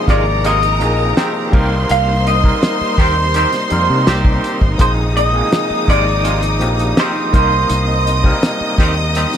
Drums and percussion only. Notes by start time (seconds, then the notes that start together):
0.08 kick, snare, closed hi-hat
0.44 closed hi-hat
0.63 closed hi-hat
0.81 closed hi-hat
1.17 snare, closed hi-hat
1.53 kick, crash
1.89 closed hi-hat
2.27 closed hi-hat
2.44 kick
2.63 snare, closed hi-hat
2.98 kick, closed hi-hat
3.34 closed hi-hat
3.53 snare, closed hi-hat
3.70 closed hi-hat
4.07 snare, closed hi-hat
4.25 kick
4.44 closed hi-hat
4.61 kick
4.79 kick, closed hi-hat
5.17 closed hi-hat
5.52 snare, closed hi-hat
5.88 kick, closed hi-hat
6.25 closed hi-hat
6.43 closed hi-hat
6.61 closed hi-hat
6.79 closed hi-hat
6.97 snare, closed hi-hat
7.34 kick, closed hi-hat
7.69 closed hi-hat
8.07 closed hi-hat
8.24 kick
8.43 snare, closed hi-hat
8.78 kick, snare, closed hi-hat
9.15 closed hi-hat
9.33 snare, closed hi-hat